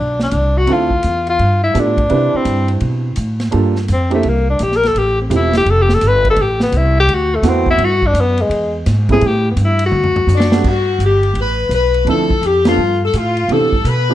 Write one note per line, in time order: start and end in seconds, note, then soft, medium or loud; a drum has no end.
0.00 0.31 B1 medium
0.00 0.21 D4 medium
0.20 0.59 D4 medium
0.20 snare medium
0.31 0.66 C2 medium
0.31 hi-hat pedal medium
0.31 ride medium
0.57 0.74 F#4 medium
0.67 1.02 D2 medium
0.67 0.88 C4 medium
0.67 0.88 D4 medium
0.67 0.88 E4 medium
0.67 0.89 F4 medium
0.67 0.89 A4 medium
0.67 ride medium
0.72 1.29 F4 medium
0.91 kick medium
1.03 1.38 E2 medium
1.03 hi-hat pedal medium
1.03 ride medium
1.27 1.61 F4 medium
1.27 ride soft
1.39 1.73 G2 medium
1.39 ride medium
1.64 1.81 E4 medium
1.74 2.09 A2 medium
1.74 1.95 B3 medium
1.74 1.95 D4 medium
1.74 1.95 F4 medium
1.74 1.95 G4 medium
1.74 1.96 A4 medium
1.74 hi-hat pedal medium
1.74 ride medium
1.80 2.38 D4 medium
1.97 kick medium
1.97 ride soft
2.09 2.32 C3 medium
2.09 3.09 C4 medium
2.09 3.09 D4 medium
2.09 3.09 E4 medium
2.09 3.09 G4 medium
2.09 3.10 B4 medium
2.09 ride medium
2.34 2.70 C4 medium
2.34 muted upright bass stroke soft
2.45 2.80 G2 medium
2.45 hi-hat pedal medium
2.45 ride medium
2.68 ride soft
2.80 3.16 B2 medium
2.80 ride medium
3.16 3.51 A2 medium
3.16 hi-hat pedal medium
3.16 ride medium
3.40 snare soft
3.40 ride soft
3.51 3.88 G2 medium
3.51 3.73 A#3 medium
3.51 3.73 D4 medium
3.51 3.73 F4 medium
3.51 3.73 G4 medium
3.51 3.73 A4 medium
3.51 ride medium
3.76 snare soft
3.88 4.23 F2 medium
3.88 hi-hat pedal medium
3.88 ride medium
3.93 4.12 C4 medium
4.10 4.22 A#3 medium
4.10 4.22 C4 medium
4.10 4.22 D4 medium
4.10 4.22 E4 medium
4.10 4.23 G4 medium
4.10 ride medium
4.14 4.30 A3 medium
4.23 4.59 C2 medium
4.23 ride medium
4.29 4.49 A#3 medium
4.50 4.65 D4 medium
4.59 4.94 A#1 medium
4.59 hi-hat pedal medium
4.59 ride medium
4.63 4.78 G4 medium
4.72 snare soft
4.76 4.89 A#4 loud
4.83 snare soft
4.83 ride soft
4.88 5.00 A4 medium
4.95 5.29 A1 medium
4.95 5.20 G4 medium
4.95 ride medium
5.21 5.37 C4 soft
5.29 5.65 E1 medium
5.29 5.51 A3 medium
5.29 5.51 C4 medium
5.29 5.51 E4 medium
5.29 5.51 F4 medium
5.29 5.51 G4 medium
5.29 hi-hat pedal medium
5.29 ride medium
5.36 5.56 E4 medium
5.53 snare medium
5.53 ride soft
5.58 5.72 G4 medium
5.66 6.01 F1 medium
5.66 ride medium
5.70 5.84 A4 medium
5.82 5.96 G4 medium
5.89 snare medium
5.94 6.09 A4 medium
6.01 6.36 G1 medium
6.01 hi-hat pedal medium
6.01 ride medium
6.08 6.28 B4 loud
6.25 kick soft
6.25 ride soft
6.30 6.43 A4 medium
6.36 6.71 A1 medium
6.36 ride medium
6.42 6.62 G4 medium
6.60 6.79 B3 medium
6.60 snare medium
6.72 7.07 C2 medium
6.72 hi-hat pedal soft
6.72 ride medium
6.77 6.98 E4 medium
7.00 7.16 G4 loud
7.07 7.42 D2 medium
7.07 ride medium
7.14 7.37 F#4 medium
7.35 7.50 A3 medium
7.42 7.77 E2 medium
7.42 7.79 A3 medium
7.42 7.79 B3 medium
7.42 7.80 C4 medium
7.42 7.80 E4 medium
7.42 7.80 F#4 medium
7.42 snare soft
7.42 hi-hat pedal medium
7.42 ride medium
7.49 7.70 C4 medium
7.66 kick medium
7.70 7.86 E4 loud
7.77 8.13 G2 medium
7.77 ride medium
7.84 8.08 F#4 medium
8.02 kick medium
8.07 8.22 D4 medium
8.13 8.49 F#2 loud
8.13 hi-hat pedal medium
8.13 ride medium
8.21 8.43 B3 medium
8.38 8.75 G#3 medium
8.38 ride soft
8.49 8.85 E2 medium
8.49 ride medium
8.86 9.21 G#2 loud
8.86 snare soft
8.86 hi-hat pedal medium
8.86 ride medium
9.09 9.21 G3 medium
9.09 9.21 A3 medium
9.09 9.21 B3 medium
9.09 9.22 C4 medium
9.09 9.22 E4 medium
9.09 9.28 G#4 loud
9.09 kick medium
9.09 ride medium
9.21 9.56 A2 medium
9.21 ride medium
9.27 9.48 G4 medium
9.51 9.66 B3 medium
9.56 9.91 G2 loud
9.56 hi-hat pedal medium
9.56 ride medium
9.65 9.84 E4 medium
9.79 ride medium
9.86 10.57 F#4 medium
9.92 10.26 D2 medium
9.92 mid tom medium
10.04 floor tom medium
10.16 floor tom medium
10.27 10.63 F#2 medium
10.27 floor tom medium
10.27 hi-hat pedal medium
10.35 10.65 D4 medium
10.40 snare medium
10.52 10.64 G3 medium
10.52 10.64 A3 medium
10.52 10.64 B3 medium
10.52 10.64 D4 medium
10.52 10.64 F#4 medium
10.52 snare loud
10.64 10.98 G2 medium
10.64 kick medium
10.64 crash medium
10.68 11.02 F#4 medium
10.99 11.33 G1 medium
10.99 hi-hat pedal medium
10.99 ride medium
11.04 11.36 G4 medium
11.23 ride soft
11.34 11.69 A1 medium
11.34 ride medium
11.40 11.71 B4 medium
11.69 12.04 B1 medium
11.69 12.06 B4 medium
11.69 hi-hat pedal medium
11.69 ride medium
11.94 ride soft
12.05 12.41 D2 medium
12.05 12.28 F3 medium
12.05 12.28 A3 medium
12.05 12.28 C4 medium
12.05 12.28 D4 medium
12.05 12.29 E4 medium
12.05 ride medium
12.09 12.44 A4 medium
12.30 kick medium
12.41 12.77 F2 medium
12.41 hi-hat pedal soft
12.41 ride medium
12.45 12.67 G4 medium
12.65 12.77 F3 medium
12.65 12.77 A3 medium
12.65 12.77 B3 medium
12.65 12.78 D4 medium
12.65 13.00 F4 medium
12.65 12.78 A4 medium
12.65 snare medium
12.65 ride medium
12.77 13.12 G2 medium
13.04 13.16 A4 medium
13.13 13.48 A2 medium
13.13 13.50 F4 medium
13.13 hi-hat pedal medium
13.13 ride medium
13.37 ride soft
13.49 13.61 C3 medium
13.49 13.71 E3 medium
13.49 13.71 B3 soft
13.49 13.71 C4 soft
13.49 13.72 D4 soft
13.49 13.72 G4 medium
13.49 13.86 A4 loud
13.49 ride medium
13.61 13.72 B2 medium
13.73 13.84 G2 medium
13.73 kick medium
13.84 14.14 B2 loud
13.84 14.14 B4 medium
13.84 hi-hat pedal medium
13.84 ride medium
14.09 14.14 E3 medium
14.09 14.14 B3 medium
14.09 14.14 C4 medium
14.09 14.14 D4 medium
14.09 14.14 G4 medium